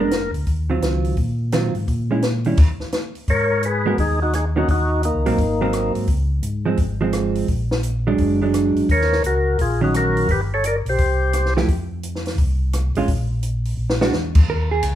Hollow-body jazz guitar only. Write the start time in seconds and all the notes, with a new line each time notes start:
0.00 G#3 B3 D4
0.70 D#3 F#3 C4 F4
1.53 D#3 F#3 C4 F4
2.11 G#3 C#4 E4
2.46 D#3 G3 C#4 E4
3.86 G#3 B3 F#4 A#4
4.56 D#3 A#3 C#4 F#4
5.26 F#3 A#3 C4
5.61 F#3 A#3 C4
6.66 F3 G#3 C4
7.01 F3 G#3 C4
8.07 F#3 G#3 D4
8.42 F#3 G#3 D4
9.81 D#3 F#3 C#4
11.57 F3 A3 E4 G4
12.97 G#3 C#4 F4
14.01 G#3 D4 F#4
14.50 A#4
14.71 G#4